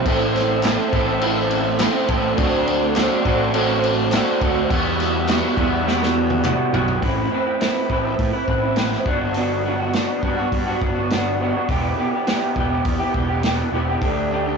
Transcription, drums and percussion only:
0.06 kick loud
0.06 crash medium
0.36 snare soft
0.36 crash medium
0.63 snare loud
0.63 clap medium
0.63 crash medium
0.93 kick loud
0.93 crash medium
1.21 crash medium
1.51 crash medium
1.79 snare loud
1.79 clap loud
1.79 crash medium
2.08 kick medium
2.08 crash medium
2.38 kick loud
2.38 crash medium
2.67 crash medium
2.96 snare loud
2.96 clap medium
2.96 crash medium
3.25 kick medium
3.25 crash medium
3.54 crash medium
3.84 crash medium
4.12 snare loud
4.12 clap loud
4.12 crash medium
4.41 kick medium
4.41 crash medium
4.70 kick loud
4.70 crash medium
5.00 snare soft
5.00 crash medium
5.29 snare loud
5.29 clap medium
5.29 crash medium
5.57 kick medium
5.57 crash medium
5.88 snare medium
6.03 snare medium
6.30 high tom medium
6.45 clap loud
6.45 mid tom medium
6.74 floor tom loud
6.88 floor tom medium
7.02 kick loud
7.02 open hi-hat soft
7.61 snare loud
7.61 open hi-hat medium
7.90 kick medium
8.19 kick loud
8.19 open hi-hat soft
8.48 kick medium
8.76 snare loud
8.76 open hi-hat soft
8.92 snare soft
9.06 kick loud
9.34 open hi-hat soft
9.93 snare loud
9.93 open hi-hat soft
10.23 kick medium
10.52 kick loud
10.52 open hi-hat soft
10.82 kick medium
11.10 snare loud
11.10 open hi-hat soft
11.69 kick loud
11.69 open hi-hat soft
12.27 snare loud
12.27 open hi-hat medium
12.56 kick medium
12.85 kick loud
12.85 open hi-hat soft
13.14 kick medium
13.43 snare loud
13.43 open hi-hat medium
14.02 kick loud
14.02 open hi-hat soft

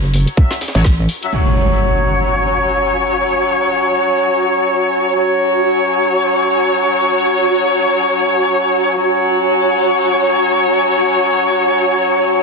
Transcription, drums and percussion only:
0.04 snare soft
0.14 open hi-hat medium
0.14 shaker medium
0.27 closed hi-hat medium
0.37 kick loud
0.37 closed hi-hat medium
0.37 shaker medium
0.51 snare soft
0.51 snare medium
0.61 snare medium
0.61 open hi-hat loud
0.61 shaker medium
0.68 snare medium
0.68 shaker medium
0.75 snare medium
0.75 closed hi-hat medium
0.75 shaker medium
0.80 snare medium
0.80 shaker medium
0.85 kick loud
0.85 snare loud
0.85 closed hi-hat medium
0.85 open hi-hat medium
1.09 open hi-hat medium
1.09 shaker medium
1.23 closed hi-hat medium
1.33 crash medium

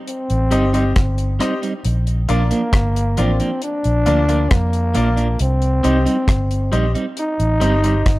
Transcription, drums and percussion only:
0.07 closed hi-hat medium
0.30 closed hi-hat soft
0.51 closed hi-hat medium
0.74 closed hi-hat medium
0.96 kick loud
0.96 cross-stick medium
0.96 closed hi-hat medium
1.18 closed hi-hat soft
1.40 cross-stick medium
1.40 closed hi-hat medium
1.63 closed hi-hat soft
1.85 closed hi-hat medium
2.07 closed hi-hat soft
2.29 closed hi-hat medium
2.51 closed hi-hat soft
2.73 kick loud
2.73 cross-stick loud
2.73 closed hi-hat medium
2.96 closed hi-hat medium
3.17 closed hi-hat medium
3.40 closed hi-hat soft
3.62 closed hi-hat medium
3.84 closed hi-hat soft
4.06 closed hi-hat medium
4.29 closed hi-hat medium
4.51 kick loud
4.51 cross-stick loud
4.51 closed hi-hat medium
4.73 closed hi-hat soft
4.95 closed hi-hat medium
5.17 closed hi-hat soft
5.39 closed hi-hat medium
5.62 closed hi-hat soft
5.84 closed hi-hat medium
6.06 closed hi-hat medium
6.28 kick loud
6.28 cross-stick loud
6.28 closed hi-hat loud
6.51 closed hi-hat medium
6.73 closed hi-hat medium
6.95 closed hi-hat medium
7.17 closed hi-hat medium
7.40 closed hi-hat soft
7.61 closed hi-hat medium
7.84 closed hi-hat medium
8.06 kick loud
8.06 cross-stick loud
8.06 closed hi-hat medium

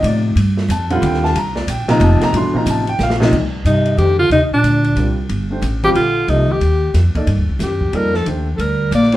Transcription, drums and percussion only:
0.04 ride medium
0.37 ride medium
0.57 snare soft
0.70 hi-hat pedal medium
0.70 ride medium
0.90 ride medium
1.03 ride medium
1.14 snare soft
1.24 snare medium
1.35 ride medium
1.56 snare medium
1.68 hi-hat pedal medium
1.68 ride medium
1.89 snare medium
1.89 ride medium
2.01 ride medium
2.21 snare medium
2.21 ride medium
2.34 ride medium
2.66 hi-hat pedal medium
2.66 ride medium
2.87 ride medium
2.99 snare medium
2.99 hi-hat pedal medium
3.10 snare medium
3.22 snare loud
3.33 kick medium
3.33 crash medium
3.65 hi-hat pedal medium
3.65 ride medium
3.86 ride soft
3.98 ride medium
4.31 ride medium
4.64 hi-hat pedal medium
4.64 ride medium
4.84 ride soft
4.97 ride medium
5.29 ride medium
5.62 hi-hat pedal medium
5.62 ride medium
5.84 ride soft
5.95 ride medium
6.28 ride medium
6.61 ride medium
6.94 snare soft
6.94 hi-hat pedal medium
6.94 ride medium
7.15 kick medium
7.15 ride soft
7.27 ride medium
7.60 snare soft
7.60 hi-hat pedal medium
7.60 ride medium
7.81 kick medium
7.93 ride medium
8.14 snare soft
8.26 ride medium
8.59 ride medium
8.92 hi-hat pedal medium
8.92 ride medium
9.03 snare soft
9.12 snare soft
9.12 ride soft

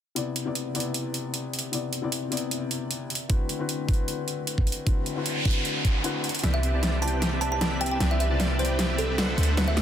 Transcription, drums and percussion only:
0.16 closed hi-hat medium
0.36 closed hi-hat medium
0.55 closed hi-hat medium
0.75 closed hi-hat soft
0.80 closed hi-hat medium
0.94 closed hi-hat medium
1.14 closed hi-hat medium
1.34 closed hi-hat medium
1.53 closed hi-hat soft
1.59 closed hi-hat medium
1.73 closed hi-hat medium
1.93 closed hi-hat medium
2.12 closed hi-hat medium
2.32 closed hi-hat soft
2.37 closed hi-hat medium
2.51 closed hi-hat medium
2.71 closed hi-hat medium
2.91 closed hi-hat medium
3.10 closed hi-hat medium
3.15 closed hi-hat medium
3.30 kick loud
3.30 closed hi-hat medium
3.49 closed hi-hat medium
3.69 closed hi-hat medium
3.89 kick loud
3.89 closed hi-hat soft
3.94 closed hi-hat medium
4.08 closed hi-hat medium
4.28 closed hi-hat medium
4.47 closed hi-hat medium
4.58 kick medium
4.67 closed hi-hat soft
4.72 closed hi-hat medium
4.87 kick loud
4.87 closed hi-hat medium
5.06 closed hi-hat medium
5.26 closed hi-hat medium
5.45 kick loud
5.45 closed hi-hat soft
5.51 closed hi-hat medium
5.65 closed hi-hat medium
5.85 kick medium
5.85 closed hi-hat medium
6.04 closed hi-hat medium
6.24 closed hi-hat medium
6.29 closed hi-hat medium
6.35 closed hi-hat medium
6.39 closed hi-hat medium
6.44 snare soft
6.44 closed hi-hat medium
6.63 closed hi-hat medium
6.83 snare soft
6.83 closed hi-hat medium
7.02 closed hi-hat medium
7.08 closed hi-hat medium
7.22 snare medium
7.22 closed hi-hat medium
7.42 closed hi-hat medium
7.61 snare medium
7.61 closed hi-hat medium
7.81 closed hi-hat medium
7.86 closed hi-hat medium
8.00 snare medium
8.00 closed hi-hat medium
8.20 closed hi-hat medium
8.40 snare medium
8.40 closed hi-hat medium
8.59 closed hi-hat medium
8.65 closed hi-hat medium
8.79 snare medium
8.79 closed hi-hat medium
8.99 closed hi-hat medium
9.18 snare medium
9.18 closed hi-hat medium
9.38 closed hi-hat medium
9.43 closed hi-hat medium
9.57 snare medium
9.57 closed hi-hat medium
9.77 snare medium
9.77 closed hi-hat medium

